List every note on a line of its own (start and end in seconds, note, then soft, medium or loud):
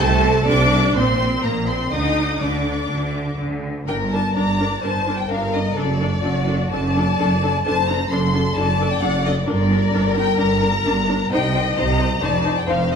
0.00 0.42 C2 medium
0.00 0.42 C3 medium
0.00 0.47 A3 medium
0.00 0.46 A4 loud
0.00 0.47 A5 loud
0.46 0.89 C2 medium
0.46 0.89 C3 medium
0.46 0.94 D4 medium
0.46 0.95 D5 loud
0.46 0.94 D6 loud
0.95 1.38 A#1 medium
0.95 1.37 A#2 medium
0.95 1.43 C4 medium
0.95 1.43 C5 medium
0.95 1.43 C6 loud
1.42 1.86 A#1 medium
1.42 1.86 A#2 medium
1.42 1.68 A#3 medium
1.42 1.50 A#4 medium
1.42 1.68 A#5 medium
1.67 1.93 C4 medium
1.67 1.92 C5 medium
1.67 1.92 C6 medium
1.91 2.36 D2 medium
1.91 2.36 D3 medium
1.91 2.41 D#4 medium
1.91 2.40 D#5 medium
1.91 2.41 D#6 medium
2.40 2.84 D2 medium
2.40 2.84 D3 medium
2.40 3.39 D4 medium
2.40 3.37 D5 medium
2.40 3.39 D6 medium
2.90 3.33 D2 medium
2.90 3.33 D3 medium
3.39 3.83 D2 medium
3.39 3.82 D3 medium
3.86 4.31 G1 medium
3.86 4.30 G2 medium
3.86 3.96 D4 medium
3.86 4.31 A#4 medium
3.86 3.96 A#4 medium
3.86 3.96 G5 medium
4.12 4.21 D4 medium
4.12 4.20 A#4 medium
4.12 4.35 A5 medium
4.35 4.77 G1 medium
4.35 4.77 G2 medium
4.35 4.44 D4 medium
4.35 4.44 A#4 medium
4.35 4.82 D5 medium
4.35 4.82 A#5 medium
4.60 4.68 D4 medium
4.60 4.68 A#4 medium
4.82 5.24 G1 medium
4.82 5.23 G2 medium
4.82 4.91 D4 medium
4.82 4.91 A#4 medium
4.82 5.28 C5 medium
4.82 5.16 A5 medium
5.07 5.15 D4 medium
5.07 5.15 A#4 medium
5.18 5.29 G5 medium
5.28 5.70 G1 medium
5.28 5.70 G2 medium
5.28 5.38 D4 medium
5.28 5.74 A#4 medium
5.28 5.39 A#4 medium
5.28 5.52 F5 medium
5.52 5.62 D4 medium
5.52 5.62 A#4 medium
5.52 5.75 D#5 medium
5.74 6.17 F#1 medium
5.74 6.16 F#2 medium
5.74 5.84 D4 medium
5.74 6.21 A4 medium
5.74 5.85 A4 medium
5.74 6.71 D5 medium
6.00 6.08 D4 medium
6.00 6.08 A4 medium
6.22 6.66 F#1 medium
6.22 6.65 F#2 medium
6.22 6.32 D4 medium
6.22 6.70 F#4 medium
6.22 6.32 A4 medium
6.48 6.56 D4 medium
6.48 6.56 A4 medium
6.70 7.13 F#1 medium
6.70 7.13 F#2 medium
6.70 6.81 D4 medium
6.70 6.81 A4 medium
6.70 7.64 D5 medium
6.70 7.62 A5 medium
6.97 7.05 D4 medium
6.97 7.05 A4 medium
7.18 7.59 F#1 medium
7.18 7.59 F#2 medium
7.18 7.28 D4 medium
7.18 7.28 A4 medium
7.43 7.51 D4 medium
7.43 7.51 A4 medium
7.64 8.05 F#1 medium
7.64 8.05 F#2 medium
7.64 7.73 D4 medium
7.64 7.73 A4 medium
7.64 8.10 C5 medium
7.64 7.87 A5 loud
7.87 7.96 D4 medium
7.87 7.96 A4 medium
7.87 8.10 A#5 loud
8.10 8.51 F#1 medium
8.10 8.50 F#2 medium
8.10 8.20 D4 medium
8.10 8.57 A4 medium
8.10 8.20 A4 medium
8.10 8.56 C6 medium
8.33 8.42 D4 medium
8.33 8.41 A4 medium
8.54 8.96 F#1 medium
8.54 8.96 F#2 medium
8.54 8.65 D4 medium
8.54 8.65 A4 medium
8.54 9.49 D5 medium
8.54 8.89 A5 loud
8.80 8.89 D4 medium
8.80 8.88 A4 medium
8.92 9.03 G5 medium
9.01 9.43 F#1 medium
9.01 9.42 F#2 medium
9.01 9.11 D4 medium
9.01 9.11 A4 medium
9.01 9.25 F#5 loud
9.25 9.33 D4 medium
9.25 9.34 A4 medium
9.25 9.34 D#5 medium
9.47 9.89 G1 medium
9.47 9.88 G2 medium
9.47 9.56 D4 medium
9.47 9.56 A#4 medium
9.47 11.32 A#4 loud
9.47 10.16 D5 medium
9.71 9.79 D4 medium
9.71 9.79 A#4 medium
9.93 10.34 G1 medium
9.93 10.34 G2 medium
9.93 10.02 D4 medium
9.93 10.01 A#4 medium
10.15 10.23 D4 medium
10.15 10.24 A#4 medium
10.15 10.39 G5 loud
10.38 10.80 G1 medium
10.38 10.80 G2 medium
10.38 10.46 D4 medium
10.38 10.46 A#4 medium
10.38 11.29 A#5 loud
10.62 10.71 D4 medium
10.62 10.70 A#4 medium
10.85 11.26 G1 medium
10.85 11.26 G2 medium
10.85 10.94 D4 medium
10.85 10.94 A#4 medium
11.09 11.17 D4 medium
11.09 11.17 A#4 medium
11.31 11.71 C2 medium
11.31 11.71 C3 medium
11.31 11.40 D#4 medium
11.31 11.40 C5 medium
11.31 12.20 D#5 medium
11.31 11.76 G5 loud
11.55 11.63 D#4 medium
11.55 11.63 C5 medium
11.76 12.17 C2 medium
11.76 12.16 C3 medium
11.76 11.85 D#4 medium
11.76 11.85 C5 medium
11.76 12.21 A#5 loud
11.99 12.07 D#4 medium
11.99 12.07 C5 medium
12.22 12.62 F1 medium
12.22 12.62 F2 medium
12.22 12.30 D#4 medium
12.22 12.30 C5 medium
12.22 12.67 D5 medium
12.22 12.56 A5 medium
12.45 12.53 D#4 medium
12.45 12.53 C5 medium
12.57 12.68 G5 medium
12.67 12.96 F1 medium
12.67 12.96 F2 medium
12.67 12.75 D#4 medium
12.67 12.75 C5 medium
12.67 12.96 C5 medium
12.67 12.90 F5 medium
12.91 12.96 D#4 medium
12.91 12.96 C5 medium
12.91 12.96 D#5 medium